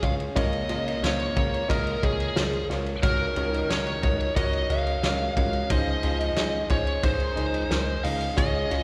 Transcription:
Already playing: F4 G#4 C#5
0.02 C#2 F4 G#4 C#5 F5, kick, ride
0.20 ride
0.35 C#2 A#2 C#3 A#3 F4 A#4 C#5 D#5, kick, ride
0.53 ride
0.69 C#2 F4 A#4 D#5, ride
0.88 ride
1.03 C#2 F4 A#4 C5 C#5, snare, ride
1.20 ride
1.36 C#2 F4 A#4 C#5, kick, ride
1.54 ride
1.69 C#2 F4 A#4 D#5, kick, ride
1.87 ride
2.03 C#2 F4 G#4 A#4 C#5, kick, ride
2.20 ride
2.36 C#2 F4 A#4 C5, snare, ride
2.53 ride
2.69 C#2 F4 A#4 C#5, snare, ride
2.86 ride
3.02 C#2 C#3 D#3 D#4 F#4 A#4 C#5, kick, ride
3.36 C#2 F#4 A#4 C#5, ride
3.54 ride
3.69 C#2 F#4 A#4 C#5, snare, ride
3.87 ride
4.02 C#2 F#4 A#4 C#5, kick, ride
4.21 ride
4.36 C#2 F#4 A#4 C#5 D#5, kick, ride
4.53 ride
4.69 C#2 F#4 A#4 D#5 F5, ride
4.87 ride
5.03 C#2 C#3 C#4 F#4 A#4 D#5, snare, ride
5.37 C#2 F#4 A#4 C#5 F5, kick, ride
5.53 ride
5.70 C#2 C#3 F3 D#4 F4 G#4 C5 D#5, kick, ride
6.03 C#2 D#4 G#4 C5, ride
6.21 ride
6.36 C#2 D#4 G#4 C5, snare, ride
6.69 C#2 D#4 G#4 C5 C#5, kick, ride
6.87 ride
7.03 C#2 D#3 D#4 G#4 C5, kick, ride
7.20 ride
7.36 C#2 D#4 G#4 D#5, ride
7.54 ride
7.70 C#2 D#4 G#4 A#4, snare, ride
8.03 C#2 D#4 G#4 D#5 F5, open hi-hat, ride
8.21 ride
8.36 C#2 C#3 G#3 F4 G#4 C#5 D#5, kick, hi-hat pedal, ride
8.71 C#2 F4 G#4 C#5, ride

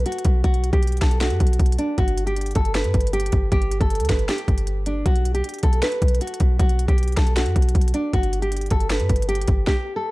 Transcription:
0.06 F#4, closed hi-hat
0.12 closed hi-hat
0.18 closed hi-hat
0.25 B1, kick, closed hi-hat
0.44 B1 F#4, kick, closed hi-hat
0.54 closed hi-hat
0.64 closed hi-hat
0.73 B1 G4, kick, closed hi-hat
0.83 closed hi-hat
0.87 closed hi-hat
0.92 closed hi-hat
0.97 closed hi-hat
1.01 B1 A4, finger snap, kick, snare, closed hi-hat
1.11 closed hi-hat
1.21 F#4, finger snap, snare, closed hi-hat
1.30 F#2, closed hi-hat
1.40 B1, kick, closed hi-hat
1.47 closed hi-hat
1.53 closed hi-hat
1.59 B1, kick, closed hi-hat
1.66 closed hi-hat
1.72 closed hi-hat
1.79 D4, closed hi-hat
1.98 G1 F#4, kick, closed hi-hat
2.08 closed hi-hat
2.18 closed hi-hat
2.27 G4, closed hi-hat
2.36 closed hi-hat
2.41 closed hi-hat
2.46 closed hi-hat
2.51 closed hi-hat
2.55 G1 A4, kick, closed hi-hat
2.65 closed hi-hat
2.74 B4, finger snap, snare, closed hi-hat
2.84 G2, closed hi-hat
2.94 G1, kick, closed hi-hat
3.01 closed hi-hat
3.07 closed hi-hat
3.13 G4, closed hi-hat
3.20 closed hi-hat
3.26 closed hi-hat
3.32 G1, kick, closed hi-hat
3.52 G1 G4, kick, closed hi-hat
3.62 closed hi-hat
3.71 closed hi-hat
3.81 G1 A4, kick, closed hi-hat
3.90 closed hi-hat
3.95 closed hi-hat
4.00 D2, closed hi-hat
4.05 closed hi-hat
4.09 G1 B4, finger snap, kick, snare, closed hi-hat
4.19 closed hi-hat
4.28 G4, finger snap, snare, closed hi-hat
4.38 closed hi-hat
4.48 G1, kick, closed hi-hat
4.58 closed hi-hat
4.67 closed hi-hat
4.86 D4, closed hi-hat
5.06 B1 F#4, kick, closed hi-hat
5.16 closed hi-hat
5.25 closed hi-hat
5.34 G4, closed hi-hat
5.44 closed hi-hat
5.49 closed hi-hat
5.54 closed hi-hat
5.59 closed hi-hat
5.63 B1 A4, kick, closed hi-hat
5.73 closed hi-hat
5.82 B4, finger snap, snare, closed hi-hat
5.92 closed hi-hat
6.02 B1, kick, closed hi-hat
6.08 closed hi-hat
6.15 closed hi-hat
6.21 F#4, closed hi-hat
6.27 closed hi-hat
6.34 closed hi-hat
6.40 B1, kick, closed hi-hat
6.59 B1 F#4, kick, closed hi-hat
6.69 closed hi-hat
6.79 closed hi-hat
6.88 B1 G4, kick, closed hi-hat
6.98 closed hi-hat
7.03 closed hi-hat
7.08 closed hi-hat
7.12 closed hi-hat
7.17 B1 A4, finger snap, kick, snare, closed hi-hat
7.27 closed hi-hat
7.36 F#4, finger snap, snare, closed hi-hat
7.46 F#2, closed hi-hat
7.56 B1, kick, closed hi-hat
7.62 closed hi-hat
7.69 closed hi-hat
7.75 B1, kick, closed hi-hat
7.81 closed hi-hat
7.88 closed hi-hat
7.94 D4, closed hi-hat
8.13 G1 F#4, kick, closed hi-hat
8.23 closed hi-hat
8.33 closed hi-hat
8.42 G4, closed hi-hat
8.52 closed hi-hat
8.57 closed hi-hat
8.61 closed hi-hat
8.66 closed hi-hat
8.71 G1 A4, kick, closed hi-hat
8.80 closed hi-hat
8.90 B4, finger snap, snare, closed hi-hat
9.00 G2, closed hi-hat
9.09 G1, kick, closed hi-hat
9.16 closed hi-hat
9.22 closed hi-hat
9.29 G4, closed hi-hat
9.35 closed hi-hat
9.41 closed hi-hat
9.48 G1, kick, closed hi-hat
9.67 G4, kick, snare
9.96 A4

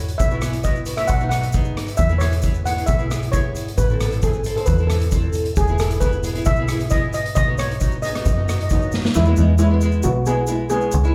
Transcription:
Already playing: E2 C#5
0.08 closed hi-hat
0.18 B1 E5, kick, closed hi-hat, shaker
0.31 B3 E4 F#4, shaker
0.42 B3 E4 G#4, cross-stick, closed hi-hat, shaker
0.53 closed hi-hat, shaker
0.64 B3 E4 F#4 D#5, kick, closed hi-hat, shaker
0.76 shaker
0.86 B3 E4 F#4, closed hi-hat, shaker
0.97 B3 E4 F#4 E5, cross-stick, closed hi-hat, shaker
1.07 B1 F#5, kick, closed hi-hat, shaker
1.20 B3 D#4 F#4, shaker
1.29 B3 D#4 F#4 F#5, cross-stick, closed hi-hat, shaker
1.42 closed hi-hat, shaker
1.53 B3 D#4 G#4, kick, closed hi-hat, shaker
1.64 shaker
1.77 cross-stick, closed hi-hat
1.86 closed hi-hat, shaker
1.97 E2 E5, kick, closed hi-hat, shaker
2.09 B3 E4 G#4, shaker
2.18 B3 E4 G#4 C#5, cross-stick, closed hi-hat, shaker
2.31 closed hi-hat, shaker
2.42 B3 E4 G#4, kick, closed hi-hat, shaker
2.54 shaker
2.66 B3 E4 G#4 F#5, closed hi-hat, shaker
2.77 B3 E4 G#4, closed hi-hat
2.86 B1 E5, kick, closed hi-hat, shaker
2.99 B3 E4 G#4, shaker
3.10 B3 E4 G#4, cross-stick, closed hi-hat, shaker
3.22 closed hi-hat, shaker
3.32 B3 E4 G#4 C#5, kick, closed hi-hat, shaker
3.55 closed hi-hat, shaker
3.68 closed hi-hat
3.78 A1 B4, kick, closed hi-hat, shaker
3.89 C4 E4 A4, shaker
4.00 C4 E4 A4, cross-stick, closed hi-hat, shaker
4.11 closed hi-hat, shaker
4.22 C4 E4 G#4 A4, kick, closed hi-hat, shaker
4.33 shaker
4.44 C4 E4 A4, closed hi-hat, shaker
4.57 C4 E4 A4 C5, closed hi-hat
4.66 E2 B4, kick, closed hi-hat, shaker
4.78 C4 E4 A4, shaker
4.87 A4, cross-stick, closed hi-hat, shaker
4.91 C4 E4 A4
5.00 closed hi-hat, shaker
5.11 C4 E4 A4, kick, closed hi-hat, shaker
5.33 closed hi-hat, shaker
5.45 closed hi-hat
5.56 E1 G#4, kick, closed hi-hat, shaker
5.68 B3 E4 G#4, shaker
5.78 B3 E4 G#4 A4, cross-stick, closed hi-hat, shaker
5.90 closed hi-hat, shaker
6.00 B3 E4 G#4 B4, kick, closed hi-hat, shaker
6.12 shaker
6.23 B3 E4 G#4, closed hi-hat, shaker
6.34 B3 E4 G#4, closed hi-hat
6.45 B1 E5, kick, closed hi-hat, shaker
6.56 B3 E4 G#4, shaker
6.68 B3 E4 G#4, cross-stick, closed hi-hat, shaker
6.80 closed hi-hat, shaker
6.90 B3 E4 G#4 D#5, kick, closed hi-hat, shaker
7.13 D#5, closed hi-hat, shaker
7.26 closed hi-hat
7.35 B1 D#5, kick, closed hi-hat, shaker
7.47 B3 D#4 F#4
7.58 B3 D#4 F#4 C#5, cross-stick, closed hi-hat, shaker
7.71 closed hi-hat
7.80 B3 D#4 F#4, kick, closed hi-hat, shaker
7.92 shaker
8.02 B3 D#4 G#4 D#5, closed hi-hat, shaker
8.10 D#5
8.14 B3 D#4 F#4 D#5, cross-stick, closed hi-hat, shaker
8.25 F#2 D#5, kick, closed hi-hat, shaker
8.33 B3 D#4 D#5
8.37 F#4 D#5
8.47 B3 D#4 F#4 D#5, cross-stick, closed hi-hat, shaker
8.55 D#5
8.61 D#5, closed hi-hat
8.70 F#3 B3 D#4 F#4 D#5, kick, closed hi-hat, shaker
8.80 D#5, shaker
8.92 snare, shaker
9.04 snare, shaker
9.14 E2 G#3 E4, shaker
9.25 G#3 B3 E4, shaker
9.36 E2 G#3 B3 D#4, shaker
9.58 G#3 B3 C#4 E4, shaker
9.70 G#3 B3 E4
9.81 G#3 B3 E4, shaker
9.92 shaker
10.03 B1 B3 F#4, shaker
10.26 G#3 B3 E4 G#4, shaker
10.47 G#3 B3 E4, shaker
10.70 G#3 B3 C#4 G#4, shaker
10.81 shaker
10.92 C#2, shaker
11.03 G#3 C#4 E4, shaker

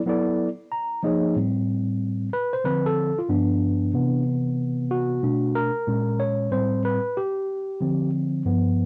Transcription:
0.06 F#3 B3 E4 A4 D5
0.72 A#5
1.03 F3 A#3 D#4 G#4 C#5 D#5
1.36 A2 G3 C4
2.33 B4
2.53 C5
2.64 D3 F3 C4 B4
2.86 A4
3.19 F4
3.29 G2 F3 B3 D4
3.94 C3 E3 B3
4.91 F#4
5.23 B2 A3 D4
5.55 A#4
5.87 A#2 G#3 C#4
6.20 C#5
6.51 A2 G3 C4 C5
6.85 B4
7.17 G4
7.80 D3 F3 C4
8.45 G2 F3 B3

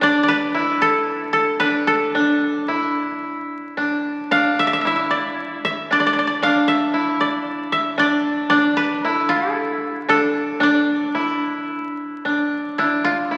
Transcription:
Already playing: E4
0.01 D4 D5
0.23 D5
0.28 B4
0.54 E4
0.82 A4
1.33 A4
1.60 D4 B4
1.87 A4
2.15 D4
2.68 E4
3.77 D4
4.31 D4 F5
4.59 E5
4.67 E5
4.73 E5
4.81 E4 E5
4.87 E5
4.96 E5
5.11 D5
5.65 E5
5.91 D4 D5
6.00 D5
6.07 D5
6.13 D5
6.19 D5
6.27 D5
6.42 D4 F5
6.68 E5
6.94 E4
7.21 D5
7.72 E5
7.98 D4 D5
8.50 D4 D5
8.77 B4
9.04 E4 A4
9.29 F4
9.53 A4
10.09 D4 A4
10.60 D4 D5
11.15 E4
11.41 C#5
11.55 C5
11.68 B4
12.25 D4
12.78 D4 E4
13.04 F4
13.31 E4

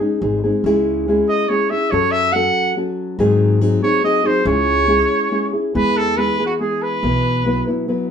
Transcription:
0.00 G#3 C#4 D#4 G#4
0.21 G#1 G#3 C4 D#4 G#4
0.44 G#3 C4 D#4 G#4
0.64 C#2 C#3 G#3 C#4 E4 G#4
1.08 G#3 C#4 E4 G#4
1.29 D#5
1.49 G#3 C#4 E4 G#4 C#5
1.70 C#4 E4 G#4 E5
1.91 F#2 F#3 C#4 F#4 A4 C#5
2.11 E5
2.32 F#3 C#4 F#4 A4 F#5
2.76 F#3 C#4 F#4 A4
3.19 G#2 D#3 F#3 C4 D#4 G#4
3.61 F#3 C4 D#4 G#4
3.83 F#3 C4 D#4 G#4 C#5
4.03 F#3 C4 D#4 G#4 D#5
4.24 F#3 C4 D#4 G#4 C5
4.45 C#2 C#3 G#3 C#4 E4 G#4 C#5
4.87 G#3 C#4 E4 G#4
5.31 G#3 C#4 E4 G#4
5.53 C#4 E4 G#4
5.74 E2 E3 G#3 B3 E4 G#4 B4
5.97 A4
6.17 G#3 B3 E4 G#4 B4
6.39 B3 E4 G#4
6.46 F#4
6.59 G#3 B3 E4 G#4
6.82 B4
7.03 B1 B2 E3 F#3 B3 E4 B4
7.45 F#3 B3 E4 B4
7.67 F#3 B3 E4 B4
7.88 F#3 B3 E4 B4

